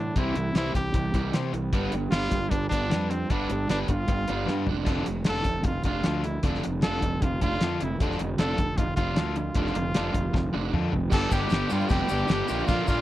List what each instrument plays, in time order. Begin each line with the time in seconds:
Already playing: overdriven electric guitar C3 E3, trumpet D4
0.16 fingered electric bass C2, overdriven electric guitar C3 E3 G3 C4 E4 C5, trumpet E4, kick, closed hi-hat
0.35 fingered electric bass C2, overdriven electric guitar C3 E3, muted overdriven electric guitar stroke, closed hi-hat
0.55 fingered electric bass C2, overdriven electric guitar C3 E3 G3 C4 E4 C5, trumpet E4, snare, closed hi-hat
0.74 fingered electric bass C2, overdriven electric guitar C3 E3, trumpet G4, muted overdriven electric guitar stroke, kick, closed hi-hat
0.94 fingered electric bass C2, overdriven electric guitar C3 E3, muted overdriven electric guitar stroke, kick, closed hi-hat
1.14 fingered electric bass C2, overdriven electric guitar C3 E3 G3, muted overdriven electric guitar stroke, kick, closed hi-hat
1.33 overdriven electric guitar C3 E3 G3 C4 E4 C5, fingered electric bass C3, snare, closed hi-hat
1.53 fingered electric bass C2, overdriven electric guitar C3 E3, muted overdriven electric guitar stroke, closed hi-hat
1.73 fingered electric bass G1, overdriven electric guitar G3 B3 D4 B4, kick, closed hi-hat
1.92 fingered electric bass G1, overdriven electric guitar G3 D4, muted overdriven electric guitar stroke, closed hi-hat
2.11 fingered electric bass G1, overdriven electric guitar G3 B3 D4 B4, trumpet F4, snare, closed hi-hat
2.31 fingered electric bass G1, overdriven electric guitar G3 D4, muted overdriven electric guitar stroke, kick, closed hi-hat
2.50 fingered electric bass G1, overdriven electric guitar G3 D4, trumpet D4, muted overdriven electric guitar stroke, kick, closed hi-hat
2.69 fingered electric bass G1, overdriven electric guitar G3 B3 D4, trumpet D4, muted overdriven electric guitar stroke, kick, closed hi-hat
2.90 fingered electric bass F2, overdriven electric guitar G3 B3 D4 B4, snare, closed hi-hat
3.10 overdriven electric guitar G3 D4, trumpet C4, muted overdriven electric guitar stroke, closed hi-hat
3.30 fingered electric bass G1, overdriven electric guitar G3 B3 D4 B4, trumpet D4, kick, closed hi-hat
3.50 fingered electric bass G1, overdriven electric guitar G3 D4, muted overdriven electric guitar stroke, closed hi-hat
3.69 fingered electric bass G1, overdriven electric guitar G3 B3 D4 B4, trumpet D4, snare, closed hi-hat
3.88 fingered electric bass G1, overdriven electric guitar G3 D4, trumpet F4, muted overdriven electric guitar stroke, kick, closed hi-hat
4.08 fingered electric bass G1, overdriven electric guitar G3 D4, muted overdriven electric guitar stroke, kick, closed hi-hat
4.28 fingered electric bass G1, overdriven electric guitar G3 B3 D4, muted overdriven electric guitar stroke, closed hi-hat
4.46 fingered electric bass G2, overdriven electric guitar G3 B3 D4 B4, snare
4.66 fingered electric bass F1, overdriven electric guitar D3 F3 D4, muted overdriven electric guitar stroke, floor tom
4.85 fingered electric bass F1, overdriven electric guitar D3 F3 D4 F4 A4, kick, closed hi-hat, crash
5.06 fingered electric bass F1, overdriven electric guitar D3 F3, muted overdriven electric guitar stroke, closed hi-hat
5.24 fingered electric bass F1, overdriven electric guitar D3 F3 D4 F4 A4, snare, closed hi-hat
5.29 trumpet A4
5.44 fingered electric bass F1, overdriven electric guitar D3 F3, muted overdriven electric guitar stroke, kick, closed hi-hat
5.63 fingered electric bass F1, overdriven electric guitar D3 F3, trumpet F4, muted overdriven electric guitar stroke, kick, closed hi-hat
5.83 fingered electric bass F1, overdriven electric guitar D3 F3 D4, trumpet F4, muted overdriven electric guitar stroke, kick, closed hi-hat
6.04 fingered electric bass D2, overdriven electric guitar D3 F3 D4 F4 A4, snare, closed hi-hat
6.24 overdriven electric guitar D3 F3, trumpet E4, muted overdriven electric guitar stroke, closed hi-hat
6.43 fingered electric bass F1, overdriven electric guitar D3 F3 D4 F4 A4, kick, closed hi-hat
6.54 snare
6.64 fingered electric bass F1, overdriven electric guitar D3 F3, muted overdriven electric guitar stroke, closed hi-hat
6.82 fingered electric bass F1, overdriven electric guitar D3 F3 D4 F4 A4, trumpet A4, snare, closed hi-hat
7.02 fingered electric bass F1, overdriven electric guitar D3 F3, muted overdriven electric guitar stroke, kick, closed hi-hat
7.22 fingered electric bass F1, overdriven electric guitar D3 F3, trumpet F4, muted overdriven electric guitar stroke, kick, closed hi-hat
7.41 fingered electric bass F1, overdriven electric guitar D3 F3 D4, trumpet F4, muted overdriven electric guitar stroke, kick, closed hi-hat
7.61 fingered electric bass F2, overdriven electric guitar D3 F3 D4 F4 A4, snare, closed hi-hat
7.81 fingered electric bass F1, overdriven electric guitar D3 F3, trumpet E4, muted overdriven electric guitar stroke, closed hi-hat
8.00 fingered electric bass F1, overdriven electric guitar D3 F3 D4 F4 A4, kick, closed hi-hat
8.11 snare
8.19 fingered electric bass F1, overdriven electric guitar D3 F3, muted overdriven electric guitar stroke, closed hi-hat
8.38 fingered electric bass F1, overdriven electric guitar D3 F3 D4 F4 A4, trumpet A4, snare, closed hi-hat
8.58 fingered electric bass F1, overdriven electric guitar D3 F3, muted overdriven electric guitar stroke, kick, closed hi-hat
8.78 fingered electric bass F1, overdriven electric guitar D3 F3, trumpet F4, muted overdriven electric guitar stroke, kick, closed hi-hat
8.97 fingered electric bass F1, overdriven electric guitar D3 F3 D4, trumpet F4, muted overdriven electric guitar stroke, kick, closed hi-hat
9.16 fingered electric bass D2, overdriven electric guitar D3 F3 D4 F4 A4, snare, closed hi-hat
9.36 overdriven electric guitar D3 F3, trumpet F4, muted overdriven electric guitar stroke, closed hi-hat
9.55 fingered electric bass F1, overdriven electric guitar D3 F3 D4 F4 A4, kick, closed hi-hat
9.66 snare
9.75 fingered electric bass F1, overdriven electric guitar D3 F3, muted overdriven electric guitar stroke, closed hi-hat
9.94 fingered electric bass F1, overdriven electric guitar D3 F3 D4 F4 A4, snare, closed hi-hat
10.13 fingered electric bass F1, overdriven electric guitar D3 F3, muted overdriven electric guitar stroke, kick, closed hi-hat
10.33 fingered electric bass F1, overdriven electric guitar D3 F3, muted overdriven electric guitar stroke, kick, snare
10.53 fingered electric bass F1, overdriven electric guitar D3 F3 D4, muted overdriven electric guitar stroke
10.72 fingered electric bass F2, overdriven electric guitar D3 F3 D4 F4 A4, mid tom
10.92 fingered electric bass F1, overdriven electric guitar D3 F3, muted overdriven electric guitar stroke, floor tom
11.10 fingered electric bass G1, overdriven electric guitar G2 D3 G3 B3 D4 G4, trumpet A4, transistor combo organ B4 D5 G5 D6, tine electric piano A5, kick, crash, shaker
11.14 overdriven electric guitar D4 G4
11.29 fingered electric bass G1, overdriven electric guitar G2 D3 G3 B3 D4 G4, trumpet G4, tine electric piano G5, kick, crash, shaker
11.50 fingered electric bass G1, overdriven electric guitar G2 D3 G3 B3 D4 G4, snare, crash, shaker
11.54 overdriven electric guitar D4 G4
11.70 overdriven electric guitar G2 D3 G3 B3 D4 G4, fingered electric bass G2, trumpet F4, tine electric piano F5, crash, shaker
11.80 shaker
11.89 fingered electric bass F1, overdriven electric guitar G2 D3 G3 B3 D4 G4, trumpet G4, tine electric piano G5, kick, crash, shaker
12.09 fingered electric bass G1, overdriven electric guitar G2 D3 G3 B3 D4 G4, crash, shaker
12.27 fingered electric bass G1, overdriven electric guitar G2 D3 G3 B3 D4 G4, snare, crash, shaker
12.48 fingered electric bass A#1, overdriven electric guitar A#2 D3 A#3 D4 F4, transistor combo organ A#3 F5, crash, shaker
12.59 shaker
12.68 fingered electric bass A#1, overdriven electric guitar A#2 D3 A#3 D4 F4, trumpet F4, tine electric piano F5, kick, crash, shaker
12.87 overdriven electric guitar A#2 D3 A#3 D4 F4, fingered electric bass A#2, trumpet F4, tine electric piano F5, kick, crash, shaker